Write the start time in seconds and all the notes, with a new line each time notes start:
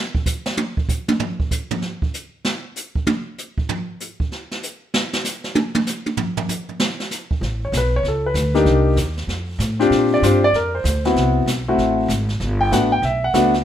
0.15 kick
0.26 kick, hi-hat pedal
0.46 snare
0.57 high tom
0.77 kick
0.89 kick, hi-hat pedal
1.08 high tom
1.20 floor tom
1.40 kick
1.51 kick, hi-hat pedal
1.71 floor tom
1.82 snare
2.02 kick
2.14 hi-hat pedal
2.45 snare
2.76 hi-hat pedal
2.95 kick
3.07 high tom
3.38 hi-hat pedal
3.58 kick
3.69 floor tom
4.00 hi-hat pedal
4.20 kick
4.32 snare
4.51 snare
4.63 hi-hat pedal
4.94 snare
5.13 snare
5.24 snare, hi-hat pedal
5.44 snare
5.55 high tom
5.75 high tom
5.87 snare, hi-hat pedal
6.06 high tom
6.17 floor tom
6.37 floor tom
6.49 floor tom, hi-hat pedal
6.69 floor tom
6.80 snare
7.00 snare
7.11 snare, hi-hat pedal
7.31 kick
7.41 A1, brush sweep, snare
7.65 C#5
7.72 B1, snare, hi-hat pedal
7.77 B4
7.96 C#5
8.03 C#2, brush sweep, snare
8.08 A4
8.26 B4
8.34 D2, snare, hi-hat pedal
8.54 A#3 D4 D#4 G4, snare
8.65 C2, brush sweep, snare
8.96 D#2, snare, hi-hat pedal
9.17 snare
9.27 F2, brush sweep, snare
9.59 A2, snare, hi-hat pedal
9.79 C4 D4 F4 G4, snare
9.90 A#2, brush sweep, snare
10.14 D5
10.22 G2 C4 D4 F4 G4 C5, snare, hi-hat pedal
10.44 D5
10.53 F2 A#4, brush sweep, snare
10.75 C5
10.84 D2, snare, hi-hat pedal
11.05 B3 C4 E4 F#4, snare
11.15 C2, brush sweep, snare
11.46 B1, snare, hi-hat pedal
11.68 A3 C4 E4 F#4
11.78 A1, brush sweep, snare
12.08 G#1, snare, hi-hat pedal
12.29 snare
12.40 G1, brush sweep, snare
12.61 G5
12.71 A1 A3 B3 D4 F#4 F#5, snare, hi-hat pedal
12.92 G5
13.02 B1 E5, brush sweep, snare
13.24 F#5
13.33 C#2 A3 B3 D4 F#4, snare, hi-hat pedal
13.54 snare